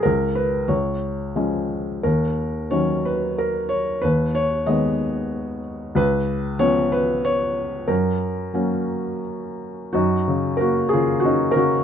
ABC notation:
X:1
M:3/4
L:1/8
Q:1/4=92
K:F#
V:1 name="Felt piano"
A B c3 z | A2 c B A c | B c d3 z | B2 c B c2 |
A4 z2 | [DF]2 [FA] [EG] [DF] [FA] |]
V:2 name="Felt piano" clef=bass
C,,2 C,,2 [E,G,C]2 | D,,2 [D,F,C]4 | D,,2 [D,G,B,]4 | C,,2 [E,B,C]4 |
F,,2 [F,A,C]4 | F,, C, A, C, C C, |]